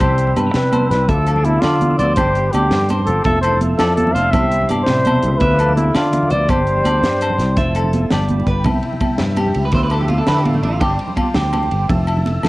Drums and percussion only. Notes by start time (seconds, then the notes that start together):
0.00 kick, high conga, low conga, low agogo
0.09 low conga
0.18 closed hi-hat
0.27 low conga
0.36 closed hi-hat, high conga, low agogo
0.46 low conga
0.54 snare, closed hi-hat, low conga
0.64 low conga
0.72 closed hi-hat, high conga, low agogo
0.81 low conga
0.91 snare, closed hi-hat
1.09 kick, closed hi-hat, high conga, low conga
1.26 closed hi-hat, low agogo
1.36 low conga
1.44 closed hi-hat, high conga
1.62 snare, closed hi-hat, low conga, low agogo
1.81 closed hi-hat, high conga, low conga
1.90 low conga
1.99 closed hi-hat
2.16 kick, closed hi-hat, high conga, low conga, low agogo
2.27 low conga
2.35 closed hi-hat
2.53 closed hi-hat, high conga, low agogo
2.63 low conga
2.71 snare, closed hi-hat, low conga
2.89 closed hi-hat, high conga, low agogo
2.99 low conga
3.07 closed hi-hat
3.24 kick, closed hi-hat, high conga, low conga
3.43 closed hi-hat, low agogo
3.52 low conga
3.61 closed hi-hat, high conga
3.79 snare, closed hi-hat, low conga, low agogo
3.97 closed hi-hat, high conga, low conga
4.07 low conga
4.16 closed hi-hat
4.25 low conga
4.33 kick, closed hi-hat, high conga, low conga, low agogo
4.43 low conga
4.52 closed hi-hat
4.62 low conga
4.69 closed hi-hat, high conga, low agogo
4.80 low conga
4.87 snare, closed hi-hat, low conga
4.97 low conga
5.05 closed hi-hat, high conga, low agogo
5.15 low conga
5.23 closed hi-hat
5.40 kick, closed hi-hat, high conga, low conga
5.59 closed hi-hat, low agogo
5.69 low conga
5.77 closed hi-hat, high conga
5.95 snare, closed hi-hat, low conga, low agogo
6.13 closed hi-hat, high conga, low conga
6.23 low conga
6.30 closed hi-hat
6.41 low conga
6.49 kick, closed hi-hat, high conga, low conga, low agogo
6.67 closed hi-hat
6.77 low conga
6.85 closed hi-hat, high conga, low conga, low agogo
6.94 low conga
7.03 snare, closed hi-hat, low conga
7.21 closed hi-hat, low conga, low agogo
7.30 low conga
7.39 snare, closed hi-hat
7.57 kick, closed hi-hat, high conga, low conga
7.75 closed hi-hat, low conga, low agogo
7.84 low conga
7.93 closed hi-hat, high conga
8.11 snare, closed hi-hat, low conga, low agogo
8.29 closed hi-hat, high conga, low conga
8.40 low conga
8.47 kick, closed hi-hat
8.64 kick, ride, high conga, low conga, low agogo
8.83 ride
8.93 low conga
9.00 kick, ride, high conga, low conga, low agogo
9.18 snare, ride, low conga
9.36 ride, high conga, low conga, low agogo
9.46 low conga
9.54 ride
9.72 kick, snare, ride, high conga, low conga
9.83 low conga
9.90 ride, low agogo
10.01 low conga
10.08 ride, high conga
10.19 low conga
10.27 snare, ride, low conga, low agogo
10.37 low conga
10.45 ride, high conga
10.54 low conga
10.63 ride, low conga
10.81 kick, ride, high conga, low conga, low agogo
10.99 ride
11.08 low conga
11.17 kick, ride, high conga, low conga, low agogo
11.34 snare, ride, low conga
11.53 ride, high conga, low conga, low agogo
11.63 low conga
11.71 ride
11.89 kick, ride, high conga, low conga
12.07 ride, low agogo
12.17 low conga
12.26 ride, high conga
12.36 low conga
12.43 snare, ride, low conga, low agogo